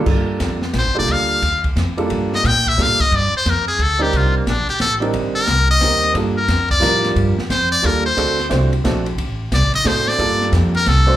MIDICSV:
0, 0, Header, 1, 6, 480
1, 0, Start_track
1, 0, Key_signature, -2, "minor"
1, 0, Tempo, 337268
1, 91, Time_signature, 3, 2, 24, 8
1, 15890, End_track
2, 0, Start_track
2, 0, Title_t, "Muted trumpet"
2, 0, Program_c, 0, 59
2, 1115, Note_on_c, 0, 72, 80
2, 1377, Note_off_c, 0, 72, 0
2, 1404, Note_on_c, 0, 74, 92
2, 1594, Note_on_c, 0, 77, 86
2, 1616, Note_off_c, 0, 74, 0
2, 2360, Note_off_c, 0, 77, 0
2, 3347, Note_on_c, 0, 75, 97
2, 3511, Note_on_c, 0, 79, 110
2, 3532, Note_off_c, 0, 75, 0
2, 3820, Note_on_c, 0, 76, 98
2, 3842, Note_off_c, 0, 79, 0
2, 4012, Note_on_c, 0, 77, 102
2, 4033, Note_off_c, 0, 76, 0
2, 4283, Note_on_c, 0, 75, 99
2, 4305, Note_off_c, 0, 77, 0
2, 4492, Note_on_c, 0, 74, 89
2, 4514, Note_off_c, 0, 75, 0
2, 4772, Note_off_c, 0, 74, 0
2, 4792, Note_on_c, 0, 72, 93
2, 4979, Note_on_c, 0, 70, 83
2, 5000, Note_off_c, 0, 72, 0
2, 5228, Note_off_c, 0, 70, 0
2, 5237, Note_on_c, 0, 68, 88
2, 5439, Note_on_c, 0, 69, 86
2, 5461, Note_off_c, 0, 68, 0
2, 5719, Note_on_c, 0, 67, 83
2, 5740, Note_off_c, 0, 69, 0
2, 5933, Note_on_c, 0, 65, 73
2, 5954, Note_off_c, 0, 67, 0
2, 6211, Note_off_c, 0, 65, 0
2, 6220, Note_on_c, 0, 58, 48
2, 6394, Note_on_c, 0, 62, 75
2, 6416, Note_off_c, 0, 58, 0
2, 6675, Note_off_c, 0, 62, 0
2, 6683, Note_on_c, 0, 67, 88
2, 6833, Note_off_c, 0, 67, 0
2, 6850, Note_on_c, 0, 69, 96
2, 7032, Note_off_c, 0, 69, 0
2, 7617, Note_on_c, 0, 70, 96
2, 8068, Note_off_c, 0, 70, 0
2, 8122, Note_on_c, 0, 75, 111
2, 8719, Note_off_c, 0, 75, 0
2, 9064, Note_on_c, 0, 70, 74
2, 9512, Note_off_c, 0, 70, 0
2, 9553, Note_on_c, 0, 74, 99
2, 10154, Note_off_c, 0, 74, 0
2, 10691, Note_on_c, 0, 72, 86
2, 10972, Note_off_c, 0, 72, 0
2, 10984, Note_on_c, 0, 74, 110
2, 11186, Note_on_c, 0, 70, 89
2, 11208, Note_off_c, 0, 74, 0
2, 11461, Note_off_c, 0, 70, 0
2, 11469, Note_on_c, 0, 72, 92
2, 12070, Note_off_c, 0, 72, 0
2, 13583, Note_on_c, 0, 74, 87
2, 13854, Note_off_c, 0, 74, 0
2, 13879, Note_on_c, 0, 75, 111
2, 14052, Note_on_c, 0, 72, 96
2, 14073, Note_off_c, 0, 75, 0
2, 14346, Note_on_c, 0, 74, 106
2, 14367, Note_off_c, 0, 72, 0
2, 14986, Note_off_c, 0, 74, 0
2, 15303, Note_on_c, 0, 70, 102
2, 15489, Note_on_c, 0, 69, 89
2, 15510, Note_off_c, 0, 70, 0
2, 15890, Note_off_c, 0, 69, 0
2, 15890, End_track
3, 0, Start_track
3, 0, Title_t, "Grand piano"
3, 0, Program_c, 1, 0
3, 67, Note_on_c, 1, 55, 62
3, 88, Note_on_c, 1, 58, 59
3, 93, Note_on_c, 1, 62, 55
3, 95, Note_on_c, 1, 65, 53
3, 101, Note_on_c, 1, 69, 66
3, 811, Note_off_c, 1, 55, 0
3, 821, Note_off_c, 1, 58, 0
3, 824, Note_off_c, 1, 62, 0
3, 825, Note_off_c, 1, 65, 0
3, 828, Note_off_c, 1, 69, 0
3, 1349, Note_on_c, 1, 58, 59
3, 1350, Note_on_c, 1, 55, 64
3, 1355, Note_on_c, 1, 62, 58
3, 1362, Note_on_c, 1, 65, 61
3, 1372, Note_on_c, 1, 69, 69
3, 1977, Note_off_c, 1, 55, 0
3, 1977, Note_off_c, 1, 58, 0
3, 1980, Note_off_c, 1, 62, 0
3, 1983, Note_off_c, 1, 65, 0
3, 1988, Note_off_c, 1, 69, 0
3, 2810, Note_on_c, 1, 55, 70
3, 2814, Note_on_c, 1, 58, 70
3, 2814, Note_on_c, 1, 62, 68
3, 2825, Note_on_c, 1, 65, 63
3, 2829, Note_on_c, 1, 69, 78
3, 3430, Note_off_c, 1, 55, 0
3, 3432, Note_off_c, 1, 58, 0
3, 3432, Note_off_c, 1, 62, 0
3, 3437, Note_off_c, 1, 65, 0
3, 3439, Note_off_c, 1, 69, 0
3, 3952, Note_on_c, 1, 55, 63
3, 3958, Note_on_c, 1, 58, 58
3, 3961, Note_on_c, 1, 62, 55
3, 3975, Note_on_c, 1, 65, 55
3, 3979, Note_on_c, 1, 69, 68
3, 4230, Note_off_c, 1, 55, 0
3, 4233, Note_off_c, 1, 58, 0
3, 4235, Note_off_c, 1, 62, 0
3, 4241, Note_off_c, 1, 65, 0
3, 4243, Note_off_c, 1, 69, 0
3, 5677, Note_on_c, 1, 55, 68
3, 5681, Note_on_c, 1, 60, 67
3, 5688, Note_on_c, 1, 62, 67
3, 5691, Note_on_c, 1, 63, 60
3, 5706, Note_on_c, 1, 70, 74
3, 6307, Note_off_c, 1, 55, 0
3, 6309, Note_off_c, 1, 60, 0
3, 6313, Note_off_c, 1, 62, 0
3, 6314, Note_off_c, 1, 63, 0
3, 6321, Note_off_c, 1, 70, 0
3, 7119, Note_on_c, 1, 55, 69
3, 7129, Note_on_c, 1, 60, 66
3, 7136, Note_on_c, 1, 62, 63
3, 7141, Note_on_c, 1, 63, 65
3, 7153, Note_on_c, 1, 70, 77
3, 7748, Note_off_c, 1, 55, 0
3, 7754, Note_off_c, 1, 60, 0
3, 7757, Note_off_c, 1, 62, 0
3, 7760, Note_off_c, 1, 63, 0
3, 7766, Note_off_c, 1, 70, 0
3, 8263, Note_on_c, 1, 55, 61
3, 8275, Note_on_c, 1, 60, 58
3, 8276, Note_on_c, 1, 58, 58
3, 8286, Note_on_c, 1, 63, 59
3, 8291, Note_on_c, 1, 70, 67
3, 8718, Note_off_c, 1, 55, 0
3, 8727, Note_off_c, 1, 58, 0
3, 8740, Note_on_c, 1, 55, 65
3, 8747, Note_on_c, 1, 62, 62
3, 8749, Note_on_c, 1, 58, 59
3, 8756, Note_off_c, 1, 60, 0
3, 8761, Note_off_c, 1, 63, 0
3, 8761, Note_on_c, 1, 65, 61
3, 8764, Note_off_c, 1, 70, 0
3, 8771, Note_on_c, 1, 69, 71
3, 9027, Note_off_c, 1, 55, 0
3, 9031, Note_off_c, 1, 62, 0
3, 9032, Note_off_c, 1, 58, 0
3, 9038, Note_off_c, 1, 65, 0
3, 9043, Note_off_c, 1, 69, 0
3, 9678, Note_on_c, 1, 55, 82
3, 9690, Note_on_c, 1, 53, 72
3, 9698, Note_on_c, 1, 62, 72
3, 9698, Note_on_c, 1, 65, 72
3, 9709, Note_on_c, 1, 70, 88
3, 10425, Note_off_c, 1, 55, 0
3, 10431, Note_off_c, 1, 53, 0
3, 10435, Note_off_c, 1, 62, 0
3, 10435, Note_off_c, 1, 65, 0
3, 10440, Note_off_c, 1, 70, 0
3, 11139, Note_on_c, 1, 55, 72
3, 11146, Note_on_c, 1, 58, 68
3, 11149, Note_on_c, 1, 62, 65
3, 11159, Note_on_c, 1, 65, 62
3, 11167, Note_on_c, 1, 69, 82
3, 11425, Note_off_c, 1, 55, 0
3, 11429, Note_off_c, 1, 58, 0
3, 11431, Note_off_c, 1, 62, 0
3, 11436, Note_off_c, 1, 65, 0
3, 11440, Note_off_c, 1, 69, 0
3, 11624, Note_on_c, 1, 57, 71
3, 11625, Note_on_c, 1, 60, 69
3, 11636, Note_on_c, 1, 62, 65
3, 11646, Note_on_c, 1, 66, 69
3, 11650, Note_on_c, 1, 69, 85
3, 11907, Note_off_c, 1, 57, 0
3, 11908, Note_off_c, 1, 60, 0
3, 11913, Note_off_c, 1, 62, 0
3, 11919, Note_off_c, 1, 66, 0
3, 11921, Note_off_c, 1, 69, 0
3, 12090, Note_on_c, 1, 57, 71
3, 12095, Note_on_c, 1, 60, 65
3, 12101, Note_on_c, 1, 62, 64
3, 12109, Note_on_c, 1, 66, 67
3, 12111, Note_on_c, 1, 72, 80
3, 12380, Note_off_c, 1, 57, 0
3, 12383, Note_off_c, 1, 60, 0
3, 12386, Note_off_c, 1, 62, 0
3, 12389, Note_off_c, 1, 66, 0
3, 12391, Note_off_c, 1, 72, 0
3, 12582, Note_on_c, 1, 60, 66
3, 12583, Note_on_c, 1, 57, 69
3, 12595, Note_on_c, 1, 62, 64
3, 12597, Note_on_c, 1, 66, 65
3, 12604, Note_on_c, 1, 69, 73
3, 12865, Note_off_c, 1, 57, 0
3, 12865, Note_off_c, 1, 60, 0
3, 12872, Note_off_c, 1, 62, 0
3, 12872, Note_off_c, 1, 66, 0
3, 12876, Note_off_c, 1, 69, 0
3, 14008, Note_on_c, 1, 60, 61
3, 14009, Note_on_c, 1, 57, 68
3, 14024, Note_on_c, 1, 62, 62
3, 14032, Note_on_c, 1, 66, 59
3, 14037, Note_on_c, 1, 69, 73
3, 14477, Note_off_c, 1, 62, 0
3, 14489, Note_off_c, 1, 69, 0
3, 14492, Note_on_c, 1, 55, 71
3, 14494, Note_off_c, 1, 60, 0
3, 14494, Note_on_c, 1, 58, 66
3, 14495, Note_off_c, 1, 57, 0
3, 14498, Note_on_c, 1, 62, 65
3, 14505, Note_on_c, 1, 65, 67
3, 14506, Note_off_c, 1, 66, 0
3, 14511, Note_on_c, 1, 69, 81
3, 15222, Note_off_c, 1, 55, 0
3, 15223, Note_off_c, 1, 58, 0
3, 15225, Note_off_c, 1, 62, 0
3, 15228, Note_off_c, 1, 65, 0
3, 15231, Note_off_c, 1, 69, 0
3, 15746, Note_on_c, 1, 57, 76
3, 15748, Note_on_c, 1, 60, 75
3, 15759, Note_on_c, 1, 62, 69
3, 15765, Note_on_c, 1, 66, 72
3, 15776, Note_on_c, 1, 72, 86
3, 15890, Note_off_c, 1, 57, 0
3, 15890, Note_off_c, 1, 60, 0
3, 15890, Note_off_c, 1, 62, 0
3, 15890, Note_off_c, 1, 66, 0
3, 15890, Note_off_c, 1, 72, 0
3, 15890, End_track
4, 0, Start_track
4, 0, Title_t, "Upright bass"
4, 0, Program_c, 2, 32
4, 84, Note_on_c, 2, 43, 78
4, 555, Note_off_c, 2, 43, 0
4, 573, Note_on_c, 2, 41, 87
4, 1041, Note_off_c, 2, 41, 0
4, 1054, Note_on_c, 2, 34, 87
4, 1217, Note_off_c, 2, 34, 0
4, 1217, Note_on_c, 2, 31, 55
4, 1372, Note_off_c, 2, 31, 0
4, 1381, Note_on_c, 2, 29, 61
4, 1528, Note_off_c, 2, 29, 0
4, 1536, Note_on_c, 2, 38, 83
4, 2005, Note_off_c, 2, 38, 0
4, 2024, Note_on_c, 2, 39, 88
4, 2490, Note_off_c, 2, 39, 0
4, 2503, Note_on_c, 2, 41, 90
4, 2970, Note_off_c, 2, 41, 0
4, 3002, Note_on_c, 2, 43, 87
4, 3461, Note_off_c, 2, 43, 0
4, 3476, Note_on_c, 2, 46, 95
4, 3939, Note_off_c, 2, 46, 0
4, 3963, Note_on_c, 2, 45, 90
4, 4245, Note_off_c, 2, 45, 0
4, 4437, Note_on_c, 2, 43, 87
4, 4723, Note_off_c, 2, 43, 0
4, 4918, Note_on_c, 2, 41, 91
4, 5381, Note_off_c, 2, 41, 0
4, 5389, Note_on_c, 2, 38, 88
4, 5857, Note_off_c, 2, 38, 0
4, 5874, Note_on_c, 2, 36, 83
4, 6340, Note_off_c, 2, 36, 0
4, 6356, Note_on_c, 2, 34, 86
4, 6644, Note_off_c, 2, 34, 0
4, 6833, Note_on_c, 2, 33, 89
4, 7300, Note_off_c, 2, 33, 0
4, 7306, Note_on_c, 2, 31, 90
4, 7777, Note_off_c, 2, 31, 0
4, 7790, Note_on_c, 2, 36, 94
4, 8259, Note_off_c, 2, 36, 0
4, 8274, Note_on_c, 2, 39, 96
4, 8735, Note_off_c, 2, 39, 0
4, 8744, Note_on_c, 2, 43, 91
4, 9216, Note_off_c, 2, 43, 0
4, 9226, Note_on_c, 2, 41, 95
4, 9696, Note_off_c, 2, 41, 0
4, 9720, Note_on_c, 2, 45, 93
4, 10184, Note_off_c, 2, 45, 0
4, 10190, Note_on_c, 2, 43, 86
4, 10481, Note_off_c, 2, 43, 0
4, 10669, Note_on_c, 2, 41, 94
4, 11137, Note_off_c, 2, 41, 0
4, 11157, Note_on_c, 2, 39, 89
4, 11621, Note_off_c, 2, 39, 0
4, 11636, Note_on_c, 2, 38, 85
4, 12100, Note_off_c, 2, 38, 0
4, 12112, Note_on_c, 2, 36, 94
4, 12577, Note_off_c, 2, 36, 0
4, 12590, Note_on_c, 2, 34, 92
4, 13055, Note_off_c, 2, 34, 0
4, 13065, Note_on_c, 2, 33, 85
4, 13531, Note_off_c, 2, 33, 0
4, 13546, Note_on_c, 2, 36, 95
4, 13689, Note_off_c, 2, 36, 0
4, 13689, Note_on_c, 2, 33, 61
4, 13847, Note_off_c, 2, 33, 0
4, 13856, Note_on_c, 2, 30, 65
4, 14009, Note_off_c, 2, 30, 0
4, 14017, Note_on_c, 2, 45, 93
4, 14484, Note_off_c, 2, 45, 0
4, 14499, Note_on_c, 2, 43, 90
4, 14964, Note_off_c, 2, 43, 0
4, 14974, Note_on_c, 2, 41, 104
4, 15440, Note_off_c, 2, 41, 0
4, 15463, Note_on_c, 2, 36, 94
4, 15890, Note_off_c, 2, 36, 0
4, 15890, End_track
5, 0, Start_track
5, 0, Title_t, "Muted upright bass strokes"
5, 4268, Note_on_c, 9, 29, 37
5, 4410, Note_off_c, 9, 29, 0
5, 4746, Note_on_c, 9, 29, 38
5, 4888, Note_off_c, 9, 29, 0
5, 6659, Note_on_c, 9, 29, 40
5, 6802, Note_off_c, 9, 29, 0
5, 10518, Note_on_c, 9, 29, 39
5, 10660, Note_off_c, 9, 29, 0
5, 15890, End_track
6, 0, Start_track
6, 0, Title_t, "Drums"
6, 87, Note_on_c, 9, 49, 77
6, 91, Note_on_c, 9, 36, 76
6, 229, Note_off_c, 9, 49, 0
6, 233, Note_off_c, 9, 36, 0
6, 569, Note_on_c, 9, 38, 66
6, 569, Note_on_c, 9, 44, 51
6, 569, Note_on_c, 9, 51, 69
6, 574, Note_on_c, 9, 36, 23
6, 711, Note_off_c, 9, 38, 0
6, 711, Note_off_c, 9, 44, 0
6, 711, Note_off_c, 9, 51, 0
6, 716, Note_off_c, 9, 36, 0
6, 880, Note_on_c, 9, 38, 50
6, 1022, Note_off_c, 9, 38, 0
6, 1046, Note_on_c, 9, 38, 68
6, 1046, Note_on_c, 9, 44, 51
6, 1046, Note_on_c, 9, 51, 70
6, 1054, Note_on_c, 9, 36, 24
6, 1188, Note_off_c, 9, 38, 0
6, 1188, Note_off_c, 9, 44, 0
6, 1188, Note_off_c, 9, 51, 0
6, 1196, Note_off_c, 9, 36, 0
6, 1537, Note_on_c, 9, 51, 66
6, 1539, Note_on_c, 9, 36, 25
6, 1679, Note_off_c, 9, 51, 0
6, 1681, Note_off_c, 9, 36, 0
6, 2023, Note_on_c, 9, 36, 25
6, 2026, Note_on_c, 9, 51, 63
6, 2165, Note_off_c, 9, 36, 0
6, 2168, Note_off_c, 9, 51, 0
6, 2335, Note_on_c, 9, 51, 50
6, 2337, Note_on_c, 9, 36, 54
6, 2477, Note_off_c, 9, 51, 0
6, 2479, Note_off_c, 9, 36, 0
6, 2512, Note_on_c, 9, 38, 68
6, 2512, Note_on_c, 9, 44, 52
6, 2512, Note_on_c, 9, 51, 62
6, 2654, Note_off_c, 9, 38, 0
6, 2654, Note_off_c, 9, 44, 0
6, 2654, Note_off_c, 9, 51, 0
6, 2815, Note_on_c, 9, 51, 50
6, 2957, Note_off_c, 9, 51, 0
6, 2989, Note_on_c, 9, 51, 64
6, 2994, Note_on_c, 9, 36, 19
6, 3131, Note_off_c, 9, 51, 0
6, 3136, Note_off_c, 9, 36, 0
6, 3313, Note_on_c, 9, 38, 51
6, 3455, Note_off_c, 9, 38, 0
6, 3477, Note_on_c, 9, 36, 26
6, 3480, Note_on_c, 9, 38, 67
6, 3480, Note_on_c, 9, 44, 64
6, 3480, Note_on_c, 9, 51, 73
6, 3619, Note_off_c, 9, 36, 0
6, 3622, Note_off_c, 9, 38, 0
6, 3622, Note_off_c, 9, 44, 0
6, 3622, Note_off_c, 9, 51, 0
6, 3790, Note_on_c, 9, 36, 47
6, 3793, Note_on_c, 9, 51, 67
6, 3932, Note_off_c, 9, 36, 0
6, 3935, Note_off_c, 9, 51, 0
6, 3960, Note_on_c, 9, 36, 27
6, 3962, Note_on_c, 9, 38, 69
6, 3962, Note_on_c, 9, 44, 53
6, 4102, Note_off_c, 9, 36, 0
6, 4105, Note_off_c, 9, 38, 0
6, 4105, Note_off_c, 9, 44, 0
6, 4269, Note_on_c, 9, 36, 58
6, 4411, Note_off_c, 9, 36, 0
6, 4439, Note_on_c, 9, 36, 19
6, 4440, Note_on_c, 9, 51, 66
6, 4581, Note_off_c, 9, 36, 0
6, 4582, Note_off_c, 9, 51, 0
6, 4919, Note_on_c, 9, 36, 18
6, 4924, Note_on_c, 9, 38, 71
6, 4924, Note_on_c, 9, 44, 55
6, 4924, Note_on_c, 9, 51, 71
6, 5061, Note_off_c, 9, 36, 0
6, 5066, Note_off_c, 9, 38, 0
6, 5066, Note_off_c, 9, 44, 0
6, 5066, Note_off_c, 9, 51, 0
6, 5396, Note_on_c, 9, 36, 21
6, 5401, Note_on_c, 9, 51, 60
6, 5539, Note_off_c, 9, 36, 0
6, 5543, Note_off_c, 9, 51, 0
6, 5876, Note_on_c, 9, 36, 20
6, 5878, Note_on_c, 9, 51, 64
6, 6018, Note_off_c, 9, 36, 0
6, 6020, Note_off_c, 9, 51, 0
6, 6354, Note_on_c, 9, 36, 20
6, 6361, Note_on_c, 9, 38, 76
6, 6361, Note_on_c, 9, 44, 54
6, 6361, Note_on_c, 9, 51, 72
6, 6496, Note_off_c, 9, 36, 0
6, 6504, Note_off_c, 9, 38, 0
6, 6504, Note_off_c, 9, 44, 0
6, 6504, Note_off_c, 9, 51, 0
6, 6671, Note_on_c, 9, 51, 50
6, 6814, Note_off_c, 9, 51, 0
6, 6829, Note_on_c, 9, 38, 69
6, 6829, Note_on_c, 9, 44, 54
6, 6829, Note_on_c, 9, 51, 68
6, 6831, Note_on_c, 9, 36, 19
6, 6971, Note_off_c, 9, 38, 0
6, 6971, Note_off_c, 9, 44, 0
6, 6971, Note_off_c, 9, 51, 0
6, 6973, Note_off_c, 9, 36, 0
6, 7145, Note_on_c, 9, 51, 49
6, 7287, Note_off_c, 9, 51, 0
6, 7308, Note_on_c, 9, 51, 63
6, 7312, Note_on_c, 9, 36, 28
6, 7451, Note_off_c, 9, 51, 0
6, 7454, Note_off_c, 9, 36, 0
6, 7789, Note_on_c, 9, 38, 76
6, 7789, Note_on_c, 9, 44, 51
6, 7789, Note_on_c, 9, 51, 71
6, 7791, Note_on_c, 9, 36, 21
6, 7932, Note_off_c, 9, 38, 0
6, 7932, Note_off_c, 9, 44, 0
6, 7932, Note_off_c, 9, 51, 0
6, 7934, Note_off_c, 9, 36, 0
6, 8268, Note_on_c, 9, 38, 71
6, 8268, Note_on_c, 9, 44, 58
6, 8268, Note_on_c, 9, 51, 76
6, 8271, Note_on_c, 9, 36, 25
6, 8411, Note_off_c, 9, 38, 0
6, 8411, Note_off_c, 9, 44, 0
6, 8411, Note_off_c, 9, 51, 0
6, 8413, Note_off_c, 9, 36, 0
6, 8588, Note_on_c, 9, 51, 51
6, 8730, Note_off_c, 9, 51, 0
6, 8750, Note_on_c, 9, 51, 70
6, 8752, Note_on_c, 9, 36, 26
6, 8893, Note_off_c, 9, 51, 0
6, 8894, Note_off_c, 9, 36, 0
6, 9227, Note_on_c, 9, 38, 75
6, 9227, Note_on_c, 9, 44, 63
6, 9227, Note_on_c, 9, 51, 78
6, 9231, Note_on_c, 9, 36, 20
6, 9369, Note_off_c, 9, 38, 0
6, 9369, Note_off_c, 9, 44, 0
6, 9369, Note_off_c, 9, 51, 0
6, 9374, Note_off_c, 9, 36, 0
6, 9543, Note_on_c, 9, 36, 58
6, 9547, Note_on_c, 9, 51, 50
6, 9685, Note_off_c, 9, 36, 0
6, 9689, Note_off_c, 9, 51, 0
6, 9714, Note_on_c, 9, 36, 23
6, 9719, Note_on_c, 9, 38, 72
6, 9719, Note_on_c, 9, 44, 59
6, 9719, Note_on_c, 9, 51, 76
6, 9856, Note_off_c, 9, 36, 0
6, 9861, Note_off_c, 9, 38, 0
6, 9861, Note_off_c, 9, 44, 0
6, 9861, Note_off_c, 9, 51, 0
6, 10025, Note_on_c, 9, 38, 52
6, 10025, Note_on_c, 9, 51, 50
6, 10168, Note_off_c, 9, 38, 0
6, 10168, Note_off_c, 9, 51, 0
6, 10194, Note_on_c, 9, 36, 25
6, 10195, Note_on_c, 9, 51, 67
6, 10336, Note_off_c, 9, 36, 0
6, 10337, Note_off_c, 9, 51, 0
6, 10510, Note_on_c, 9, 38, 60
6, 10652, Note_off_c, 9, 38, 0
6, 10675, Note_on_c, 9, 36, 26
6, 10675, Note_on_c, 9, 38, 72
6, 10675, Note_on_c, 9, 44, 57
6, 10675, Note_on_c, 9, 51, 73
6, 10817, Note_off_c, 9, 38, 0
6, 10817, Note_off_c, 9, 44, 0
6, 10817, Note_off_c, 9, 51, 0
6, 10818, Note_off_c, 9, 36, 0
6, 11155, Note_on_c, 9, 36, 26
6, 11155, Note_on_c, 9, 51, 64
6, 11297, Note_off_c, 9, 51, 0
6, 11298, Note_off_c, 9, 36, 0
6, 11631, Note_on_c, 9, 36, 27
6, 11635, Note_on_c, 9, 51, 68
6, 11774, Note_off_c, 9, 36, 0
6, 11777, Note_off_c, 9, 51, 0
6, 11949, Note_on_c, 9, 38, 44
6, 11949, Note_on_c, 9, 51, 49
6, 12092, Note_off_c, 9, 38, 0
6, 12092, Note_off_c, 9, 51, 0
6, 12107, Note_on_c, 9, 38, 76
6, 12107, Note_on_c, 9, 44, 57
6, 12107, Note_on_c, 9, 51, 75
6, 12109, Note_on_c, 9, 36, 28
6, 12249, Note_off_c, 9, 38, 0
6, 12249, Note_off_c, 9, 44, 0
6, 12249, Note_off_c, 9, 51, 0
6, 12251, Note_off_c, 9, 36, 0
6, 12420, Note_on_c, 9, 51, 49
6, 12562, Note_off_c, 9, 51, 0
6, 12585, Note_on_c, 9, 36, 23
6, 12590, Note_on_c, 9, 38, 74
6, 12590, Note_on_c, 9, 44, 60
6, 12590, Note_on_c, 9, 51, 74
6, 12727, Note_off_c, 9, 36, 0
6, 12733, Note_off_c, 9, 38, 0
6, 12733, Note_off_c, 9, 44, 0
6, 12733, Note_off_c, 9, 51, 0
6, 12896, Note_on_c, 9, 51, 51
6, 13039, Note_off_c, 9, 51, 0
6, 13064, Note_on_c, 9, 36, 21
6, 13068, Note_on_c, 9, 51, 69
6, 13206, Note_off_c, 9, 36, 0
6, 13211, Note_off_c, 9, 51, 0
6, 13544, Note_on_c, 9, 36, 19
6, 13547, Note_on_c, 9, 38, 73
6, 13547, Note_on_c, 9, 44, 66
6, 13547, Note_on_c, 9, 51, 76
6, 13686, Note_off_c, 9, 36, 0
6, 13689, Note_off_c, 9, 38, 0
6, 13689, Note_off_c, 9, 44, 0
6, 13689, Note_off_c, 9, 51, 0
6, 13856, Note_on_c, 9, 51, 50
6, 13998, Note_off_c, 9, 51, 0
6, 14022, Note_on_c, 9, 36, 26
6, 14023, Note_on_c, 9, 38, 78
6, 14023, Note_on_c, 9, 44, 57
6, 14023, Note_on_c, 9, 51, 72
6, 14164, Note_off_c, 9, 36, 0
6, 14166, Note_off_c, 9, 38, 0
6, 14166, Note_off_c, 9, 44, 0
6, 14166, Note_off_c, 9, 51, 0
6, 14186, Note_on_c, 9, 38, 29
6, 14329, Note_off_c, 9, 38, 0
6, 14346, Note_on_c, 9, 38, 49
6, 14488, Note_off_c, 9, 38, 0
6, 14502, Note_on_c, 9, 36, 22
6, 14507, Note_on_c, 9, 51, 68
6, 14645, Note_off_c, 9, 36, 0
6, 14649, Note_off_c, 9, 51, 0
6, 14818, Note_on_c, 9, 38, 45
6, 14960, Note_off_c, 9, 38, 0
6, 14979, Note_on_c, 9, 36, 29
6, 14980, Note_on_c, 9, 38, 77
6, 14980, Note_on_c, 9, 44, 56
6, 14980, Note_on_c, 9, 51, 74
6, 15122, Note_off_c, 9, 36, 0
6, 15123, Note_off_c, 9, 38, 0
6, 15123, Note_off_c, 9, 44, 0
6, 15123, Note_off_c, 9, 51, 0
6, 15292, Note_on_c, 9, 51, 51
6, 15434, Note_off_c, 9, 51, 0
6, 15459, Note_on_c, 9, 38, 78
6, 15459, Note_on_c, 9, 44, 53
6, 15459, Note_on_c, 9, 51, 77
6, 15460, Note_on_c, 9, 36, 19
6, 15601, Note_off_c, 9, 38, 0
6, 15601, Note_off_c, 9, 44, 0
6, 15601, Note_off_c, 9, 51, 0
6, 15602, Note_off_c, 9, 36, 0
6, 15890, End_track
0, 0, End_of_file